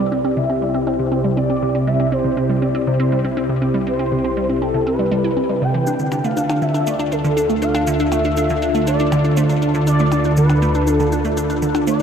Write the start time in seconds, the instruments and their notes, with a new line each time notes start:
Already playing: analog synth bass C2, analog synth pad C3 C4 E4 G4, analog synth lead D5
0.00 synth arpeggio sound G3
0.12 synth arpeggio sound C4
0.25 synth arpeggio sound C4
0.37 synth arpeggio sound C3, analog synth lead E5
0.50 synth arpeggio sound C4
0.62 synth arpeggio sound G3
0.74 synth arpeggio sound C4
0.86 synth arpeggio sound C4, analog synth lead C5
0.99 synth arpeggio sound C3
1.12 synth arpeggio sound C4
1.24 synth arpeggio sound G3
1.37 synth arpeggio sound C4, analog synth lead D5
1.50 synth arpeggio sound C4
1.62 synth arpeggio sound C3
1.75 synth arpeggio sound C4
1.87 synth arpeggio sound G3, analog synth lead E5
2.00 synth arpeggio sound C4
2.11 synth arpeggio sound C4, analog synth lead C5
2.24 synth arpeggio sound C3
2.37 synth arpeggio sound C4
2.50 synth arpeggio sound G3
2.62 synth arpeggio sound C4, analog synth lead D5
2.75 synth arpeggio sound C4
2.87 synth arpeggio sound C3, analog synth lead C5
3.00 synth arpeggio sound C4
3.12 synth arpeggio sound G3
3.25 synth arpeggio sound C4
3.37 synth arpeggio sound C4
3.49 synth arpeggio sound C3
3.62 synth arpeggio sound C4
3.74 synth arpeggio sound G3
3.87 synth arpeggio sound C4, analog synth lead C5
3.99 synth arpeggio sound C4
4.12 synth arpeggio sound C3
4.25 synth arpeggio sound C4
4.37 synth arpeggio sound G3
4.50 synth arpeggio sound C4
4.62 synth arpeggio sound C4, analog synth lead A4
4.74 synth arpeggio sound C3
4.87 synth arpeggio sound C4, analog synth lead B4
4.99 synth arpeggio sound G3
5.12 synth arpeggio sound G3
5.24 synth arpeggio sound E4
5.37 synth arpeggio sound C4
5.49 synth arpeggio sound G3
5.62 synth arpeggio sound C3, analog synth lead G5
5.74 synth arpeggio sound E3
5.86 analog synth bass D2, analog synth pad D3 D4 F4 A4, synth arpeggio sound D4, shaker
5.99 synth arpeggio sound D3, shaker
6.12 synth arpeggio sound D4, percussion blips, shaker
6.17 analog synth lead G5
6.24 synth arpeggio sound A3, analog synth lead F5, shaker
6.37 synth arpeggio sound D4, shaker
6.50 synth arpeggio sound D4, percussion blips, shaker
6.62 synth arpeggio sound D3, analog synth lead E5, shaker
6.74 synth arpeggio sound D4, shaker
6.87 synth arpeggio sound A3, analog synth lead D5, shaker
6.99 synth arpeggio sound D4, shaker
7.12 synth arpeggio sound D4, analog synth lead A4, shaker
7.24 synth arpeggio sound D3, shaker
7.37 synth arpeggio sound D4, shaker
7.50 synth arpeggio sound A3, shaker
7.62 synth arpeggio sound D4, analog synth lead F5, shaker
7.75 synth arpeggio sound D4, percussion blips, shaker
7.87 synth arpeggio sound D3, analog synth lead E5, shaker
7.99 synth arpeggio sound D4, shaker
8.12 synth arpeggio sound A3, percussion blips, shaker
8.24 synth arpeggio sound D4, shaker
8.37 synth arpeggio sound D4, shaker
8.50 synth arpeggio sound D3, shaker
8.62 synth arpeggio sound D4, shaker
8.74 synth arpeggio sound A3, shaker
8.87 synth arpeggio sound D4, analog synth lead D5, shaker
8.99 synth arpeggio sound D4, shaker
9.12 synth arpeggio sound D3, percussion blips, shaker
9.24 synth arpeggio sound D4, shaker
9.37 synth arpeggio sound A3, analog synth lead C5, shaker
9.49 synth arpeggio sound D4, shaker
9.62 synth arpeggio sound D4, shaker
9.74 synth arpeggio sound D3, shaker
9.87 synth arpeggio sound D4, analog synth lead D5, shaker
9.99 synth arpeggio sound A3, shaker
10.12 synth arpeggio sound D4, percussion blips, shaker
10.24 synth arpeggio sound D4, shaker
10.37 synth arpeggio sound D3, analog synth lead B4, shaker
10.50 synth arpeggio sound D4, percussion blips, shaker
10.62 synth arpeggio sound A3, shaker
10.75 synth arpeggio sound D4, shaker
10.87 synth arpeggio sound D4, analog synth lead A4, shaker
11.00 synth arpeggio sound D3, shaker
11.12 synth arpeggio sound D4, shaker
11.25 synth arpeggio sound A3, shaker
11.37 synth arpeggio sound D4, shaker
11.50 synth arpeggio sound D4, shaker
11.62 synth arpeggio sound D3, shaker
11.75 synth arpeggio sound D4, percussion blips, shaker
11.87 synth arpeggio sound A3, analog synth lead D5, shaker